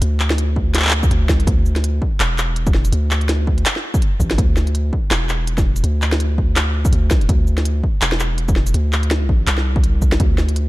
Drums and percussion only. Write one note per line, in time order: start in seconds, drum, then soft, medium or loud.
0.02 closed hi-hat medium
0.20 clap medium
0.20 shaker soft
0.30 snare medium
0.30 closed hi-hat soft
0.38 closed hi-hat medium
0.56 kick medium
0.75 clap medium
0.75 snare medium
0.75 closed hi-hat medium
0.77 clap medium
0.80 clap medium
0.82 clap medium
0.85 clap medium
0.87 clap medium
0.89 clap loud
0.91 clap loud
1.03 kick loud
1.03 shaker medium
1.11 closed hi-hat medium
1.29 kick medium
1.29 snare medium
1.29 shaker medium
1.40 closed hi-hat soft
1.47 kick loud
1.47 closed hi-hat medium
1.66 shaker soft
1.76 snare soft
1.76 closed hi-hat soft
1.84 closed hi-hat medium
2.02 kick medium
2.20 clap loud
2.20 closed hi-hat medium
2.38 clap medium
2.38 shaker medium
2.56 closed hi-hat medium
2.67 kick loud
2.67 shaker medium
2.74 snare medium
2.85 closed hi-hat soft
2.85 shaker medium
2.93 closed hi-hat medium
3.11 clap medium
3.11 shaker soft
3.21 closed hi-hat soft
3.29 snare medium
3.29 closed hi-hat medium
3.47 kick medium
3.58 closed hi-hat soft
3.66 clap loud
3.66 closed hi-hat medium
3.76 snare medium
3.94 kick loud
3.94 shaker medium
4.02 closed hi-hat medium
4.20 kick medium
4.20 shaker medium
4.31 snare medium
4.31 closed hi-hat soft
4.38 kick loud
4.38 closed hi-hat medium
4.57 snare medium
4.57 shaker soft
4.67 closed hi-hat soft
4.75 closed hi-hat medium
4.93 kick medium
5.11 clap loud
5.11 snare medium
5.11 closed hi-hat medium
5.29 clap medium
5.29 shaker medium
5.47 closed hi-hat medium
5.58 kick loud
5.58 snare medium
5.58 shaker medium
5.76 closed hi-hat soft
5.76 shaker medium
5.84 closed hi-hat medium
6.02 clap medium
6.02 shaker soft
6.12 snare medium
6.12 closed hi-hat soft
6.20 closed hi-hat medium
6.38 kick medium
6.56 clap loud
6.56 snare medium
6.56 closed hi-hat medium
6.85 kick loud
6.85 shaker medium
6.93 closed hi-hat medium
7.11 kick medium
7.11 snare medium
7.11 shaker medium
7.21 closed hi-hat soft
7.29 kick loud
7.29 closed hi-hat medium
7.47 shaker soft
7.58 snare medium
7.58 closed hi-hat soft
7.65 closed hi-hat medium
7.83 kick medium
8.02 clap loud
8.02 closed hi-hat medium
8.12 snare medium
8.20 clap medium
8.20 shaker medium
8.38 closed hi-hat medium
8.48 kick loud
8.48 shaker medium
8.56 snare medium
8.67 closed hi-hat soft
8.67 shaker medium
8.74 closed hi-hat medium
8.93 clap medium
8.93 shaker soft
9.03 closed hi-hat soft
9.11 snare medium
9.11 closed hi-hat medium
9.29 kick medium
9.47 clap loud
9.47 closed hi-hat medium
9.58 snare medium
9.76 kick loud
9.84 closed hi-hat medium
10.02 kick medium
10.02 shaker medium
10.12 snare medium
10.12 closed hi-hat soft
10.20 kick loud
10.20 closed hi-hat medium
10.38 snare medium
10.38 shaker soft
10.49 closed hi-hat soft
10.56 closed hi-hat medium